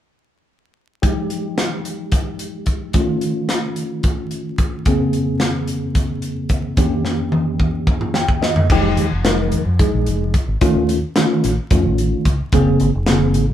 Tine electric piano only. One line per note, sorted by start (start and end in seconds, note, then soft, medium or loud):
1.02 2.91 F3 medium
1.02 2.91 G#3 soft
1.02 2.91 D#4 medium
1.02 2.91 G4 medium
2.95 4.83 D#3 medium
2.95 4.83 A3 medium
2.95 4.83 C#4 medium
2.95 4.83 F4 medium
4.87 6.75 F2 medium
4.87 6.75 C#3 medium
4.87 6.75 A#3 medium
4.87 6.75 C4 medium
4.87 6.75 G#4 medium
6.78 8.66 F2 medium
6.78 8.66 D#3 medium
6.78 8.66 A#3 medium
6.78 8.66 C#4 medium
6.78 8.67 G4 medium
8.15 8.41 G5 medium
8.42 8.68 D#5 medium
8.72 9.06 F3 medium
8.72 9.07 G#3 medium
8.72 9.07 D#4 medium
8.72 9.07 G4 medium
9.26 9.61 F3 medium
9.26 9.61 G#3 medium
9.26 9.61 D#4 medium
9.26 9.61 A#4 medium
9.79 10.33 F3 medium
9.79 10.33 G#3 medium
9.79 10.33 D#4 medium
9.79 10.33 G#4 medium
10.61 10.97 D#3 medium
10.61 10.97 A3 medium
10.61 10.97 C#4 medium
10.61 10.97 F4 medium
11.16 11.52 D#3 medium
11.16 11.52 A3 medium
11.16 11.52 C#4 medium
11.16 11.52 F4 medium
11.71 12.25 D#3 medium
11.71 12.24 A3 medium
11.71 12.24 C#4 medium
11.71 12.25 F4 medium
12.53 12.89 C#3 medium
12.53 12.89 A#3 medium
12.53 12.89 C4 medium
12.53 12.89 G#4 medium
13.09 13.44 C#3 medium
13.09 13.44 A#3 medium
13.09 13.44 C4 medium
13.09 13.44 G#4 medium